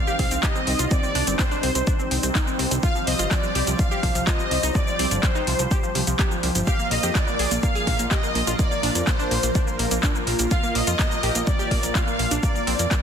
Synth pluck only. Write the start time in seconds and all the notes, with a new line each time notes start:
0.07 G4
0.19 C4
0.31 C4
0.43 G4
0.55 C4
0.67 C4
0.79 F4
0.91 C4
1.03 C4
1.15 D4
1.27 C4
1.39 C4
1.51 D4
1.63 C4
1.75 C4
1.87 D4
1.99 C4
2.11 C4
2.23 C4
2.35 D#4
2.47 C4
2.59 C4
2.71 C4
2.83 F4
2.95 F3
3.07 F3
3.19 F4
3.31 F3
3.43 F3
3.55 G4
3.67 F3
3.79 F3
3.91 G4
4.03 F3
4.15 F3
4.27 F4
4.39 F3
4.51 F3
4.63 D#4
4.75 F3
4.87 F3
4.99 C4
5.11 F3
5.23 F3
5.35 D#4
5.47 F3
5.59 F3
5.71 G4
5.83 F3
5.95 F3
6.07 F3
6.19 G4
6.31 F3
6.43 F3
6.55 F3
6.67 G4
6.79 A#3
6.91 A#3
7.03 G4
7.15 A#3
7.27 A#3
7.39 G#4
7.51 A#3
7.63 A#3
7.75 G#4
7.87 A#3
7.99 A#3
8.11 G4
8.23 A#3
8.35 A#3
8.47 F4
8.59 A#3
8.71 A#3
8.83 D4
8.95 A#3
9.07 A#3
9.19 D4
9.31 A#3
9.43 A#3
9.55 D4
9.67 A#3
9.79 A#3
9.91 A#3
10.03 D4
10.15 A#3
10.27 A#3
10.39 A#3
10.51 F4
10.63 A#3
10.75 A#3
10.87 F4
10.99 A#3
11.11 A#3
11.23 G4
11.35 A#3
11.47 A#3
11.59 G4
11.71 A#3
11.83 A#3
11.95 F4
12.07 A#3
12.19 A#3
12.31 D4
12.43 A#3
12.55 A#3
12.67 C4
12.79 A#3
12.91 A#3